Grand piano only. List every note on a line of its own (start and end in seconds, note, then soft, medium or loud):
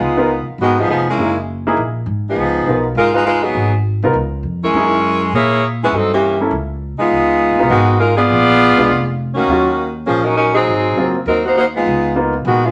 0.17 0.28 B3 medium
0.17 0.28 D#4 medium
0.17 0.28 F4 medium
0.17 0.28 A#4 medium
1.18 1.34 A#3 soft
1.18 1.34 D#4 soft
1.18 1.34 E4 soft
1.18 1.35 G#4 soft
1.67 1.77 A#3 medium
1.67 1.77 D#4 medium
1.67 1.77 E4 medium
1.67 1.77 G#4 medium
2.68 2.83 B3 soft
2.68 2.83 D#4 soft
2.68 2.83 F4 soft
2.68 2.84 A#4 soft
4.04 4.14 B3 medium
4.04 4.14 D#4 medium
4.04 4.14 F4 medium
4.04 4.14 A#4 medium
4.76 4.91 A#3 soft
4.76 4.91 D#4 soft
4.76 4.91 E4 soft
4.76 4.91 G#4 medium
6.40 6.51 A#3 medium
6.40 6.51 C#4 soft
6.40 6.51 E4 medium
6.40 6.51 A4 medium
7.59 7.69 A#3 medium
7.59 7.70 B3 soft
7.59 7.70 D#4 soft
7.59 7.70 F4 medium
8.78 8.88 G#3 medium
8.78 8.88 B3 medium
8.78 8.88 D4 medium
8.78 8.89 F4 medium
9.50 9.66 F#3 medium
9.50 9.66 A#3 soft
9.50 9.66 C#4 soft
9.50 9.66 F4 medium
10.97 11.13 F#3 soft
10.97 11.14 A#3 soft
10.97 11.14 C4 soft
10.97 11.14 F4 medium
12.16 12.32 A#3 medium
12.16 12.32 B3 soft
12.16 12.32 D#4 soft
12.16 12.33 F4 medium